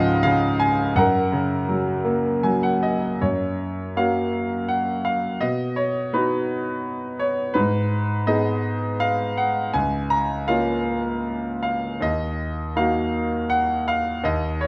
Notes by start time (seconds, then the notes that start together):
Already playing: C#2 G#2 C#3 F3 D#5 F5 F#5 G#5
0.23 C#3 F5
0.60 G#5
0.95 F#2 A#4 F#5
1.32 C#3
1.69 F#3
2.05 A#3
2.43 F#3 G#5
2.63 F#5
2.83 D#5
3.21 F#2 C#5
3.96 A#3 C#4 F#4 F5
4.68 F#5
5.05 F5
5.41 B2 D#5
5.76 C#5
6.13 B3 D#4 F#4 B4
7.19 C#5
7.54 G#2 B4
8.27 B3 D#4 G#4 D#5
9.00 F5
9.37 F#5
9.74 C#2 G#5
10.10 A#5
10.48 A#3 C#4 F4 F5
11.63 F5
12.01 D#2 D#5
12.76 A#3 D#4 F#4 F5
13.50 F#5
13.88 F5
14.24 D#2 D#5
14.61 C#5